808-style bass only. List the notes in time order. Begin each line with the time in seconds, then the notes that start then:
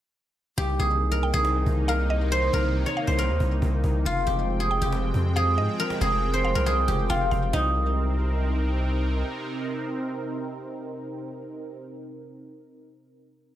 0.58 C2
0.79 C2
1.34 C2
1.66 C2
2.53 C2
3.08 C2
3.29 D#2
3.40 C2
3.62 C2
3.84 C2
4.05 F1
4.27 F1
4.82 F1
5.14 F2
5.58 G#2
6.01 F1
6.55 C2
6.88 F1
7.10 F1
7.32 F1
7.53 C2